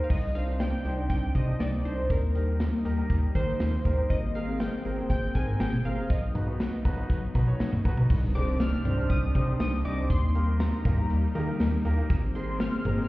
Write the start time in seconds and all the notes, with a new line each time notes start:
0.04 F5
0.10 C2 C3 C4 D4 D#4 G4 D#5, kick, crash
0.35 D4 D#4 C5 F5, closed hi-hat
0.48 D4 D#4 C5
0.60 G5, snare, closed hi-hat
0.85 C2 D4 D#4 C5, closed hi-hat
0.98 D4 D#4 C5
1.10 C2 G5, kick, closed hi-hat
1.35 C3 D4 D#4 C5 D#5, kick, closed hi-hat
1.48 D4 D#4 D#5
1.60 C2 D5, snare, closed hi-hat
1.85 C2 D4 D#4 C5, closed hi-hat
1.98 D4 D#4 C5
2.10 D#2 G3 A#3 A#4, kick, closed hi-hat
2.35 D#4 G4 A#4, closed hi-hat
2.48 D#4 G4 A#4
2.60 snare, closed hi-hat
2.85 D#2 D#4 G4 A#4, closed hi-hat
2.98 D#4 G4 A#4
3.10 D#2, kick, closed hi-hat
3.35 D#3 D#4 G4 A#4 C5, kick, closed hi-hat
3.48 D#4 G4 C5
3.60 D#2, snare, closed hi-hat
3.85 D#2 D#4 G4 A#4, kick, closed hi-hat
3.98 D#4 G4 A#4
4.10 G#1 G#3 C4 D#5, kick, closed hi-hat
4.35 C4 G#4 A#4 F5, closed hi-hat
4.48 C4 G#4 A#4
4.60 G5, snare, closed hi-hat
4.85 G#1 C4 G#4 A#4, closed hi-hat
4.98 C4 G#4 C5
5.10 G#1 G5, kick, closed hi-hat
5.35 G#2 C4 G#4 A#4 G#5, kick, closed hi-hat
5.48 C4 G#4 A#4
5.60 G#1 G5, snare, closed hi-hat
5.73 mid tom
5.85 G#1 C4 G#4 A#4 F5, closed hi-hat
5.98 C4 G#4 A#4
6.10 B1 F#3 B3 D#4 D#5, kick, closed hi-hat
6.35 D#4 F#4 B4, closed hi-hat, mid tom
6.48 D#4 F#4 B4
6.60 snare, closed hi-hat
6.85 B1 D#4 F#4 B4, kick, closed hi-hat
6.97 D#4 F#4 B4
7.10 B1, kick, closed hi-hat
7.35 B2 D#4 F#4 B4, kick, closed hi-hat
7.48 D#4 F#4 C#5
7.60 B1, snare, closed hi-hat
7.73 mid tom
7.85 B1 D#4 F#4 B4, kick, closed hi-hat
7.97 D#4 F#4 B4, mid tom
8.10 C2 C3 C4 D4 D#4 G4, kick, crash, impact
8.35 D4 D#4 G4 C5 D6, closed hi-hat, cowbell
8.60 F6, snare, closed hi-hat
8.85 C2 D4 D#4 G4 C5, closed hi-hat, mid tom
8.98 D4 D#4 G4 C5
9.10 C2 D#6, kick, closed hi-hat
9.35 C3 D4 D#4 G4 C5, kick, closed hi-hat
9.48 D4 D#4 G4 C5
9.60 C2 D#6, snare, closed hi-hat
9.85 C2 D4 D#4 G4 D#5 D6, closed hi-hat
9.98 D4 D#4 G4 C5
10.10 D#2 G3 A#3 D#4 C6, kick, closed hi-hat
10.35 A#3 D#4 G4 A#4, closed hi-hat
10.60 A#5, snare, closed hi-hat
10.85 D#2 A#3 D#4 G4 A#4, kick, closed hi-hat, mid tom
10.98 A#3 D#4 G4 A#4
11.10 D#2, closed hi-hat
11.35 D#3 A#3 D#4 G4 A#4, closed hi-hat, cowbell
11.48 A#3 D#4 G4 A#4
11.60 D#2 A#5, snare, closed hi-hat
11.85 D#2 A#3 D#4 G4 A#4, closed hi-hat
11.98 A#3 D#4 G4 A#4
12.10 G#1 G#3 C4, kick, closed hi-hat
12.35 C4 D#4 G#4 A#4 C6, closed hi-hat
12.60 F6, snare, closed hi-hat
12.85 G#1 C4 D#4 G#4 A#4, closed hi-hat, mid tom
12.97 C4 D#4 G#4 C5
13.03 F6